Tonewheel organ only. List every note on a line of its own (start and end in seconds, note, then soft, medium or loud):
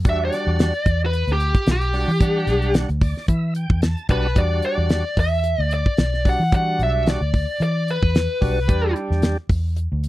0.05 0.73 G3 medium
0.05 0.74 D4 medium
0.05 0.74 F#4 medium
1.93 2.11 G3 medium
1.93 2.12 D4 medium
1.93 2.12 F#4 medium
2.21 2.89 G3 medium
2.21 2.90 D4 medium
2.21 2.90 F#5 medium
3.02 3.27 D5 medium
3.29 3.54 E5 medium
3.56 3.81 G5 medium
3.82 4.08 A5 medium
4.09 4.27 G3 medium
4.09 4.27 D4 medium
4.09 4.28 F#4 loud
4.09 4.35 A5 medium
4.35 5.04 G3 medium
4.35 5.05 D4 medium
4.35 5.05 F#4 medium
6.25 6.43 G3 medium
6.25 6.43 D4 medium
6.25 6.44 F#4 medium
6.52 7.21 G3 medium
6.52 7.22 D4 medium
6.52 7.22 F#4 medium
8.41 8.59 G3 medium
8.41 8.60 D4 medium
8.41 8.60 F#4 medium
8.68 9.37 G3 medium
8.68 9.37 D4 medium
8.68 9.38 G4 medium